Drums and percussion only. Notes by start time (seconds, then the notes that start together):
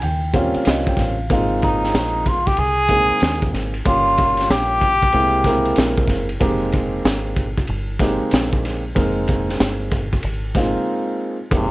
0.02 ride
0.34 kick, ride
0.54 ride
0.65 snare, hi-hat pedal, ride
0.87 kick
0.97 kick, snare, ride
1.30 kick, ride
1.62 kick, ride
1.84 snare
1.95 snare, hi-hat pedal, ride
2.26 kick, ride
2.47 kick, ride
2.57 ride
2.89 kick, ride
3.20 snare, hi-hat pedal, ride
3.42 kick
3.54 snare, ride
3.74 ride
3.86 kick, ride
4.18 kick, ride
4.37 snare, ride
4.50 snare, hi-hat pedal, ride
4.81 kick, ride
5.02 kick
5.12 ride
5.44 kick, snare, ride
5.65 ride
5.76 snare, hi-hat pedal, ride
5.97 kick
6.08 kick, snare, ride
6.29 ride
6.41 kick, ride
6.72 kick, ride
7.05 snare, hi-hat pedal, ride
7.36 kick, ride
7.57 kick
7.67 ride
7.99 kick, snare, ride
8.31 snare, hi-hat pedal, ride
8.53 kick
8.65 snare, ride
8.96 kick, ride
9.28 kick, ride
9.50 snare
9.60 snare, hi-hat pedal, ride
9.91 kick, ride
10.13 kick, ride
10.23 ride
10.55 kick, snare, ride
11.51 kick, ride